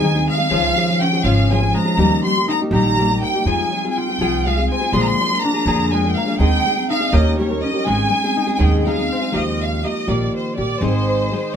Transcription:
Already playing: D#2 C4 D#4 F4 G#5
0.03 D#3 G#3 C4 D#4 G#4
0.15 G#3 C4 D#4 G#4
0.28 G#3 F5
0.37 G#3 C4 D#4 G#4
0.49 C#2 C#3 F3 C#4 F4 G#4
0.76 F3 C#4 F4 G#4
0.89 C#4 F4 G#4
1.01 C#4 G5
1.13 C#4 F4 G#4
1.24 G#1 C#3 F3 C#4 F4 G#4 F5
1.51 F3 C#4 F4 G#4 G#5
1.61 C#4 F4 G#4
1.74 G#3 A#5
1.85 C#4 F4 G#4
1.97 D#2 D#3 G3 A#3 D#4 G4
2.24 G3 A#3 D#4 G4 C6
2.37 A#3 D#4 G4
2.48 D#4 A#5
2.61 A#3 D#4 G4
2.71 A#1 D#3 G3 A#3 D#4 G4 A#5
2.98 G3 A#3 D#4 G4
3.11 A#3 D#4 G4
3.23 A#3 G5
3.35 A#3 D#4 G4
3.45 F2 F3 G#3 C4 F4 G#4 G#5
3.72 F3 C4 F4 G#4
3.85 C4 F4 G#4
3.90 G#5
3.97 F4 G5
4.09 C4 F4 G#4
4.19 C2 F3 C4 F4 G#4
4.46 F3 G#3 C4 F4 G#4 F5
4.58 C4 F4 G#4
4.70 C4 G#5
4.81 C4 F4 G#4
4.92 A#1 A#2 D3 F3 G#3 A#3 D4 G#4 C6
5.01 A#5
5.07 C6
5.20 F3 A#3 D4 G#4
5.32 F3 A#3 D4 G#4
5.42 D4 A#5
5.54 F3 A#3 D4 G#4
5.66 F2 A#2 D3 F3 A#3 D4 G#4
5.92 F3 G#3 A#3 D4 G#4 G#5
6.04 F3 A#3 D4 G#4
6.09 G5
6.15 A#3 F5
6.27 F3 A#3 D4 G#4
6.38 D#2 D#3 G#3 C4 D#4 G#4 G5
6.65 G#3 C4 D#4 G#4
6.77 C4 D#4 G#4
6.90 D#4 F5
7.00 C4 D#4 G#4
7.12 D#2 D#3 A#3 C#4 G4 A#4 D#5
7.38 G3 A#3 C#4 G4 A#4 C#5
7.50 C#4 G4 A#4
7.61 C#4 D#5
7.73 C#4 G4 A#4
7.86 G#1 G#2 D#3 G#3 C4 D#4 G#4 G#5
8.11 G#3 C4 D#4 G#4
8.24 G#3 C4 D#4 G#4
8.37 D#4
8.47 G#3 C4 D#4 G#4
8.55 G#2 D#3 G#5
8.59 D#2 G#3 C4 D#4 G#4 G5
8.79 G5
8.85 G#3 C4 D#4 G#4 F5
8.98 G#3 C4 D#4 G#4
9.12 C4
9.21 G#3 C4 D#4 G#4
9.32 D#2 D#3 F3 A#3 D#4 G4 D#5
9.63 F5
9.83 F3 A#3 D#4 G4 D#5
10.07 A#1 D#3 F3 A#3 D#4 G4 D5
10.36 C5
10.58 A#1 A#3 D#4 G4 D5
10.81 G#1 G#2 D#3 G#3 C4 D#4 G#4 C5
11.32 G#3 C4 D#4 G#4

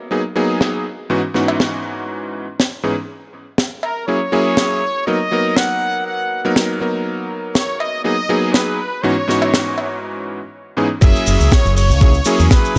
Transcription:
0.11 F#3 A#3 B3 D#4 G#4
0.35 F#3 A#3 B3 D#4 G#4
0.61 snare
1.10 G#2 E3 B3 C#4 D#4 F#4
1.34 G#2 E3 B3 C#4 D#4 F#4, snare
1.48 cowbell
1.60 snare
2.60 snare
2.83 G#2 E3 B3 C#4 D#4 G#4
3.58 snare
3.83 A#4, cowbell
4.07 F#3 A#3 C#4 E4 G#4 C#5
4.32 F#3 A#3 C#4 E4 G#4
4.57 snare
5.07 F#3 A#3 B3 D#4 A#4 D#5
5.31 F#3 A#3 B3 D#4 A#4
5.56 F#5, snare
6.06 F#5
6.45 F#3 A#3 B3 D#4 A#4
6.56 snare
6.80 F#3 A#3 B3 D#4 A#4
7.55 C#5, snare
7.80 D#5, cowbell
8.04 F#3 A#3 B3 D#4 G#4 D#5
8.29 F#3 A#3 B3 D#4 G#4
8.53 B4, snare
9.03 G#2 E3 B3 C#4 D#4 F#4 C#5
9.27 G#2 E3 B3 C#4 D#4 F#4, snare
9.42 cowbell
9.54 snare
9.78 cowbell
10.77 G#2 E3 B3 C#4 D#4 G#4
11.01 F#1 F#3 A#3 C#4 E4 G#4 E5, kick, crash, shaker
11.16 shaker
11.27 F#1, open hi-hat, shaker
11.40 C#2, shaker
11.52 C#5, kick, snare, shaker
11.65 F#1, shaker
11.77 C#5, open hi-hat, shaker
11.90 C#2, shaker
12.01 F#3 A#3 C#4 E4 G#4, kick, shaker
12.14 shaker
12.25 F#3 A#3 C#4 E4 G#4, open hi-hat, shaker
12.39 E2, shaker
12.51 B4, kick, snare, shaker
12.65 shaker

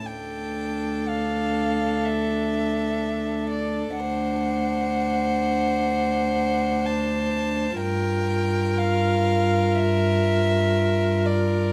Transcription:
0.04 D2 D4 A4 G5
1.08 F5
2.04 E5
3.50 D5
3.97 D2 D4 C5 F#5
6.86 A5
7.81 G2 F4 A#4 G5
8.78 F5
9.75 E5
11.26 D5

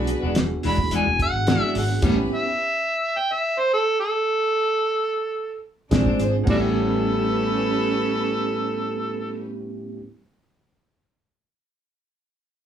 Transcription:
Already playing: B1 B3 D4 F#4 G#4 B4
0.07 muted clean electric guitar stroke, closed hi-hat
0.22 E1 G#3 D4 F#4
0.35 muted clean electric guitar stroke, snare, closed hi-hat
0.63 E1 E3 G#3 D4 F#4, open hi-hat
0.67 B5
0.78 muted clean electric guitar stroke, kick
0.91 E3 G#3 D4 F#4, closed hi-hat
0.96 G#5
1.06 E1, muted clean electric guitar stroke
1.19 F#5, muted clean electric guitar stroke, kick, closed hi-hat
1.33 G#1
1.47 E3 G#3 B3 D4 F#4 G#4, snare, closed hi-hat
1.61 G#3 D4 F#4 E5
1.74 G#1 D4 F#4 G#4, muted clean electric guitar stroke, open hi-hat
1.78 F#5
1.91 muted clean electric guitar stroke
2.02 A1 A2 G3 B3 C#4 E4 G4 B4, kick, closed hi-hat, crash
2.18 muted clean electric guitar stroke
2.35 E5
3.18 G5
3.32 E5
3.59 C5
3.73 A4
4.00 A4
5.91 A#1 A#2 G#3 C4 D4 F4 G#4 C5, kick, snare, closed hi-hat
6.06 G#3 C4 D4, kick
6.19 G#1 D4 G#4 C5, muted clean electric guitar stroke, closed hi-hat
6.35 muted clean electric guitar stroke
6.44 A1 A2 B3 C#4 G4 B4, kick, crash
6.48 G3 D4 E4 F#4 G4 A4
6.55 B3
6.60 C#4

